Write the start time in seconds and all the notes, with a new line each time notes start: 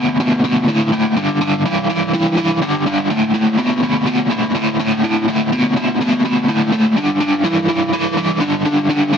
Already playing: D2 B2
0.20 D2 B2
0.44 D2 B2
0.68 D2 A2
0.92 D2 A2
1.16 G2 D3
1.41 G2 D3
1.66 G2 E3
1.89 G2 E3
2.13 G2 E3
2.37 G2 E3
2.62 G2 D3
2.86 G2 D3
3.10 D2 A2
3.34 D2 A2
3.58 D2 B2
3.83 D2 B2
4.07 D2 B2
4.30 D2 B2
4.55 D2 A2
4.79 D2 A2
5.03 D2 A2
5.28 D2 A2
5.52 D2 B2
5.76 D2 B2
6.01 D2 B2
6.25 D2 B2
6.48 D2 A2
6.72 D2 A2
6.97 G2 D3
7.20 G2 D3
7.44 G2 E3
7.68 G2 E3
7.93 G2 E3
8.17 G2 E3
8.40 G2 D3
8.65 G2 D3
8.90 G2 D3
9.13 G2 D3